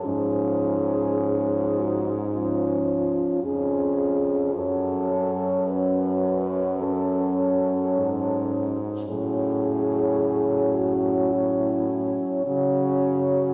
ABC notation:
X:1
M:4/4
L:1/16
Q:1/4=53
K:F#m
V:1 name="French horn"
G6 F2 ^E4 G4 | A4 B4 A6- A z | G6 F2 E4 F4 |]
V:2 name="French horn"
C6- C z C4 C4 | C8 C6- C z | C12 C4 |]
V:3 name="French horn" clef=bass
^E,6- E, z E,4 E,4 | F,8 F,6- F, z | F,12 F,4 |]
V:4 name="French horn" clef=bass
G,,8- G,,3 z ^E,,4 | F,,12 G,,4 | A,,8- A,,3 z C,4 |]